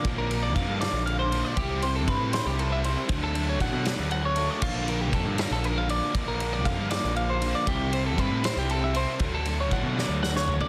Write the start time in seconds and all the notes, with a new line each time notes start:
0.04 A#1 A#2 D3 F3 A#3 D4, kick, ride
0.18 A#4
0.29 F3 A#3 D4, ride
0.43 D5
0.55 F2 D3 F3 A#3 D4 F5, kick, ride
0.68 G2
0.80 A#2 D3 F3 A#3 D4 D5, snare, ride
0.93 A#1
1.06 F5, ride
1.19 C5
1.31 F3 A#3 D4, ride
1.44 D5
1.55 C2 C3 G3 C4 E4 G4, kick, ride
1.81 G3 C4 E4 C5, ride
1.96 A4
2.07 G2 C3 G3 C4 E4 B4, kick, ride
2.20 A2
2.32 C3 G3 C4 E4 C5, snare, ride
2.46 C2 G4
2.59 A4, ride
2.72 E5
2.83 G3 C4 E4 C5, ride
3.08 D2 D3 F#3 A3 D4, kick, ride
3.24 A4
3.34 F#3 A3 D4, ride
3.49 C#5
3.58 A1 D3 F#3 A3 D4 F#5, kick, ride
3.73 B2
3.84 D3 F#3 A3 D4 D5, snare, ride
3.99 D2
4.11 F#5, ride
4.25 C#5
4.36 F#3 A3 D4, ride
4.50 D5
4.61 A#1 A#2 D3 F3 A#3 D4 F4, kick, crash
4.87 F3 A#3 D4 A#4, ride
5.01 G4
5.12 F2 D3 F3 A#3 D4 A4, kick, ride
5.26 G2
5.38 A#2 D3 F3 A#3 D4 A#4, snare, ride
5.51 A#1 A4
5.64 A#4, ride
5.78 F5
5.89 F3 A#3 D4 D5, ride
6.13 A#1 A#2 D3 F3 A#3 D4, kick, ride
6.28 A#4
6.39 F3 A#3 D4, ride
6.53 D5
6.64 F2 D3 F3 A#3 D4 F5, kick, ride
6.78 G2
6.90 A#2 D3 F3 A#3 D4 D5, snare, ride
7.04 A#1
7.16 F5, ride
7.30 C5
7.41 F3 A#3 D4, ride
7.55 D5
7.66 C2 C3 G3 C4 E4 G4, kick, ride
7.92 G3 C4 E4 C5, ride
8.06 A4
8.17 G2 C3 G3 C4 E4 B4, kick, ride
8.31 A2
8.43 C3 G3 C4 E4 C5, snare, ride
8.56 C2 G4
8.69 A4, ride
8.84 E5
8.93 G3 C4 E4 C5, ride
9.19 D2 D3 F#3 A3 D4, kick, ride
9.35 A4
9.45 F#3 A3 D4, ride
9.61 C#5
9.70 A1 D3 F#3 A3 D4 F#5, kick, ride
9.83 B2
9.95 D3 F#3 A3 D4 D5, snare
10.08 D2
10.23 F#5, snare
10.36 C#5, snare
10.46 F#3 A3 D4, floor tom
10.61 D5, floor tom